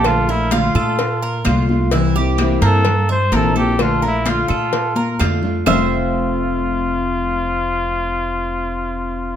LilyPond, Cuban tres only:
\new Staff \with { instrumentName = "Cuban tres" } { \time 4/4 \key f \major \tempo 4 = 128 a'8 bes'8 f'8 a'4 bes'8 f'4 | e'8 g'4 bes4 e''8 bes'8 a'8~ | a'8 bes'8 f'8 a'4 bes'8 f'4 | <f' c'' e''>1~ |
<f' c'' e''>1 | }